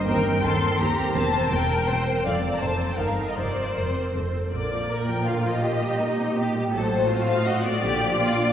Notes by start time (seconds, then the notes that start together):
0.08 D#2 C4 A#4 G5
0.26 C4 A#4
0.44 D#2 C4 A4 A#4 C6
0.62 C4 A#4
0.80 D#2 C4 G4 A#4 A#5
0.99 C4 A#4
1.15 E1 E2 C4 A#4 C5 A5
1.35 C4 A#4
1.52 E1 E2 C4 A#4 G5
1.72 C4 A#4
1.88 E1 E2 C4 A#4 C5
2.08 C4 A#4
2.26 F1 F2 C4 A4 D5 F5
2.44 C4 A4
2.53 A#5
2.62 F1 F2 C4 A4 C5 A5
2.80 C4 A4
2.90 G5
2.99 G1 G2 D#4 A#4 F5
3.17 D#4 A#4
3.29 D#5
3.37 F1 F2 C4 A#4 C5 D5
3.56 C4 A#4
3.76 F1 F2 C4 A#4 C5
3.96 C4 A#4
4.15 F1 F2 C4 A4
4.34 C4 A4
4.53 A#1 A#2 D3 A#4 D5
4.71 F3
4.90 A#3 A#4
5.08 F3 G5
5.27 D3 F4 F5
5.45 F3 D#5
5.63 D#3 G4
5.82 G3
5.99 A#3 D#4
6.18 C4
6.36 A#3 G4
6.55 G3
6.73 A1 A2 F#3 F#4 A4 C5
6.92 A3
7.09 C4 F4
7.28 D#4 F5
7.46 C4 F#4 D#5
7.65 A3 D5
7.83 A#1 A#2 D3 F4 G4
8.01 F3
8.19 A#3 F4
8.37 D4